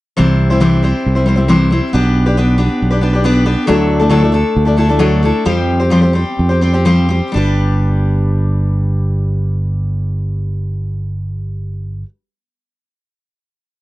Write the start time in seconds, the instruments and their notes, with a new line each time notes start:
0.17 fingered electric bass C2, steel-string acoustic guitar C3 E3 G3 C4 E4 C5
0.50 steel-string acoustic guitar G3 C4 E4 C5
0.60 steel-string acoustic guitar C3 E3 G3 C4 E4 C5
0.82 steel-string acoustic guitar G3 C4 E4 C5
1.06 fingered electric bass C2
1.15 steel-string acoustic guitar G3 C4 E4 C5
1.26 steel-string acoustic guitar G3 C4 E4 C5
1.36 steel-string acoustic guitar G3 C4 E4 C5
1.48 steel-string acoustic guitar C3 E3 G3 C4 E4 C5
1.71 steel-string acoustic guitar G3 C4 E4 C5
1.93 fingered electric bass B1, steel-string acoustic guitar B3 D4 G4 B4
2.26 steel-string acoustic guitar D4 G4 B4
2.37 steel-string acoustic guitar B3 D4 G4 B4
2.58 steel-string acoustic guitar B3 D4 G4 B4
2.82 fingered electric bass B1
2.91 steel-string acoustic guitar D4 G4 B4
3.01 steel-string acoustic guitar B3 D4 G4 B4
3.13 steel-string acoustic guitar D4 G4 B4
3.24 steel-string acoustic guitar B3 D4 G4 B4
3.45 steel-string acoustic guitar B3 D4 G4 B4
3.67 fingered electric bass D2, steel-string acoustic guitar D3 F#3 A3 D4 E4 A4
4.00 steel-string acoustic guitar A3 D4 E4 A4
4.09 steel-string acoustic guitar D3 F#3 A3 D4 E4 A4
4.23 steel-string acoustic guitar A3 D4 E4 A4
4.32 steel-string acoustic guitar A3 D4 E4 A4
4.56 fingered electric bass D2
4.65 steel-string acoustic guitar A3 D4 E4 A4
4.77 steel-string acoustic guitar A3 D4 E4 A4
4.89 steel-string acoustic guitar A3 D4 E4 A4
4.99 steel-string acoustic guitar D3 F#3 A3 D4 E4 A4
5.23 steel-string acoustic guitar A3 D4 E4 A4
5.45 fingered electric bass F2, steel-string acoustic guitar F3 G3 C4 G4 C5
5.80 steel-string acoustic guitar C4 G4 C5
5.90 steel-string acoustic guitar F3 G3 C4 G4 C5
6.01 steel-string acoustic guitar C4 G4 C5
6.13 steel-string acoustic guitar G3 C4 G4 C5
6.39 fingered electric bass F2
6.49 steel-string acoustic guitar C4 G4 C5
6.61 steel-string acoustic guitar G3 C4 G4 C5
6.73 steel-string acoustic guitar C4 G4 C5
6.85 steel-string acoustic guitar F3 G3 C4 G4 C5
7.09 steel-string acoustic guitar G3 C4 G4 C5
7.32 fingered electric bass G1, steel-string acoustic guitar G3 D4
7.36 steel-string acoustic guitar G4 B4